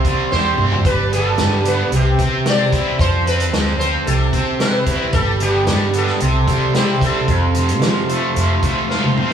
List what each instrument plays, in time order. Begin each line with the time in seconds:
Already playing: overdriven electric guitar C3, transistor combo organ G4 C5 E5 C6
0.04 overdriven electric guitar G3, kick, closed hi-hat
0.32 fretless electric bass E2, overdriven electric guitar G4, sitar C5, snare
0.58 fretless electric bass G2, overdriven electric guitar C4, mid tom
0.72 floor tom
0.85 fretless electric bass G1, overdriven electric guitar G3, transistor combo organ B4 D5 A5, sitar B4, kick, closed hi-hat
1.12 overdriven electric guitar B3, sitar A4, closed hi-hat
1.38 fretless electric bass G2, overdriven electric guitar G3, snare, closed hi-hat
1.57 sitar G4
1.65 overdriven electric guitar B3, sitar B4, closed hi-hat
1.91 fretless electric bass C2, overdriven electric guitar C3, transistor combo organ C4 G4 E5 G5, closed hi-hat
1.96 sitar G4
2.19 overdriven electric guitar C4, kick, closed hi-hat
2.45 overdriven electric guitar G4, snare, closed hi-hat
2.50 sitar D5
2.72 overdriven electric guitar E4, kick, closed hi-hat
2.99 fretless electric bass F2, overdriven electric guitar F3, transistor combo organ A4 F5, sitar C5, kick, closed hi-hat
3.26 overdriven electric guitar C4, sitar B4, closed hi-hat
3.40 closed hi-hat
3.52 fretless electric bass D2, overdriven electric guitar F3, snare, closed hi-hat
3.79 overdriven electric guitar C4, sitar C5, closed hi-hat
4.06 fretless electric bass C2, overdriven electric guitar C3, transistor combo organ G4 E5, sitar A4, closed hi-hat
4.33 overdriven electric guitar C4, kick, closed hi-hat
4.59 overdriven electric guitar G4, sitar B4, snare, closed hi-hat
4.86 overdriven electric guitar E4, kick, closed hi-hat
5.13 fretless electric bass G1, overdriven electric guitar G3, transistor combo organ G4 B4 D5 A5, sitar A4, kick, closed hi-hat
5.40 overdriven electric guitar B3, sitar G4, closed hi-hat
5.67 fretless electric bass G2, overdriven electric guitar G3, snare, closed hi-hat
5.93 overdriven electric guitar B3, closed hi-hat
5.97 sitar A4
6.07 snare
6.20 fretless electric bass C2, overdriven electric guitar C3, transistor combo organ C5 E5 C6, closed hi-hat
6.47 overdriven electric guitar G3, kick, closed hi-hat
6.73 overdriven electric guitar E4, sitar G4, snare, closed hi-hat
7.00 overdriven electric guitar C4, kick, closed hi-hat
7.05 sitar A4
7.26 overdriven electric guitar F2, fretless electric bass F2, kick, closed hi-hat
7.31 transistor combo organ A4 C5 F5
7.54 overdriven electric guitar C3, closed hi-hat
7.68 closed hi-hat
7.81 overdriven electric guitar F3, fretless electric bass F3, snare, closed hi-hat
8.09 overdriven electric guitar A3, closed hi-hat
8.35 fretless electric bass F2, overdriven electric guitar F3, closed hi-hat
8.62 overdriven electric guitar A3, kick, closed hi-hat
8.89 overdriven electric guitar F4, snare
9.04 mid tom
9.16 overdriven electric guitar C4, mid tom